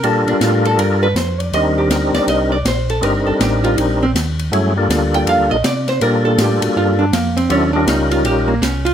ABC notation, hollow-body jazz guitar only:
X:1
M:4/4
L:1/8
Q:"Swing" 1/4=161
K:Gm
V:1 name="Hollow-body jazz guitar"
A D F A B =B c d | e G B d e d c A | B A G F E C z2 | z3 g f e d c |
B A G ^F =F D B, C | _D =D E F G B, _D F |]